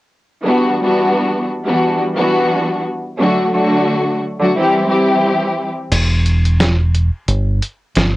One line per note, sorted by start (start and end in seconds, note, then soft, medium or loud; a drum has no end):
0.43 0.76 E3 medium
0.43 0.77 G3 medium
0.43 0.77 B3 medium
0.43 0.77 D4 medium
0.43 0.78 F#4 medium
0.80 1.44 E3 medium
0.80 1.44 G3 medium
0.80 1.44 B3 medium
0.80 1.45 D4 medium
0.80 1.45 F#4 loud
1.66 1.98 E3 medium
1.66 1.98 G3 medium
1.66 1.98 B3 medium
1.66 1.99 D4 medium
1.66 1.99 F#4 medium
2.15 2.79 E3 loud
2.15 2.80 G3 medium
2.15 2.80 B3 medium
2.15 2.80 D4 medium
2.15 2.81 F#4 loud
3.18 3.50 D3 medium
3.18 3.51 F#3 medium
3.18 3.51 A3 medium
3.18 3.51 D4 medium
3.18 3.52 F#4 loud
3.52 4.16 D3 medium
3.52 4.16 F#3 medium
3.52 4.16 A3 medium
3.52 4.17 D4 medium
3.52 4.17 F#4 loud
4.39 4.55 D3 medium
4.39 4.55 F#3 medium
4.39 4.55 A3 medium
4.39 4.56 D4 medium
4.39 4.56 F#4 medium
4.55 4.85 E3 loud
4.55 4.86 G3 medium
4.55 4.86 C4 medium
4.55 4.87 E4 medium
4.55 4.88 G4 loud
4.86 5.67 E3 medium
4.86 5.68 G3 medium
4.86 5.68 C4 medium
4.86 5.68 E4 medium
4.86 5.69 G4 loud
5.92 7.09 E1 loud
5.92 closed hi-hat medium
5.92 crash medium
6.26 closed hi-hat medium
6.45 closed hi-hat medium
6.60 snare loud
6.60 closed hi-hat medium
6.95 closed hi-hat medium
7.28 7.59 G1 medium
7.28 closed hi-hat medium
7.62 closed hi-hat medium
7.96 8.17 G1 medium
7.96 snare loud
7.96 closed hi-hat medium